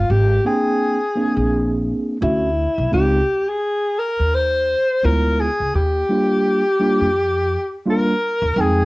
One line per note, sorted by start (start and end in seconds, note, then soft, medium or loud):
0.00 0.12 F4 medium
0.10 0.37 G#1 medium
0.10 0.46 G4 loud
0.45 0.97 A#3 medium
0.45 0.97 C4 medium
0.45 0.98 D4 medium
0.45 1.83 G#4 medium
0.45 0.98 G5 medium
1.16 2.16 A#3 medium
1.16 2.16 C4 medium
1.16 2.17 D4 medium
1.16 2.17 G#4 medium
1.37 1.91 A#1 medium
2.21 2.65 D2 loud
2.21 2.48 A3 medium
2.21 2.48 C#4 medium
2.21 2.49 E4 medium
2.21 2.89 E4 medium
2.21 2.49 F#4 medium
2.78 2.89 B1 medium
2.92 3.20 C#2 medium
2.92 3.19 G#3 medium
2.92 3.19 C4 medium
2.92 3.19 D#4 medium
2.92 3.19 F4 medium
2.92 3.51 G4 medium
3.49 4.00 G#4 medium
3.99 4.36 A#4 loud
4.19 4.73 D#2 medium
4.35 5.06 C5 loud
5.03 5.47 D2 medium
5.03 5.47 G#3 medium
5.03 5.48 B3 medium
5.03 5.48 E4 medium
5.03 5.48 F4 medium
5.03 5.41 A#4 loud
5.40 5.75 G#4 medium
5.60 5.71 C#2 medium
5.74 6.01 D#2 medium
5.74 7.83 G4 loud
6.09 6.62 G3 medium
6.09 6.62 A#3 medium
6.09 6.62 D4 medium
6.09 6.62 F4 medium
6.80 7.07 G3 medium
6.80 7.07 A#3 medium
6.80 7.07 D4 medium
6.80 7.08 F4 medium
7.01 7.55 F2 medium
7.86 8.13 G3 medium
7.86 8.13 A#3 medium
7.86 8.13 D4 medium
7.86 8.14 F4 medium
7.90 8.62 A#4 medium
8.42 8.53 D#2 medium
8.56 8.83 F2 loud
8.56 8.64 G3 soft
8.56 8.85 C4 medium
8.56 8.85 D#4 medium
8.56 8.85 G5 medium
8.60 8.85 G#3 medium
8.60 8.85 G#4 medium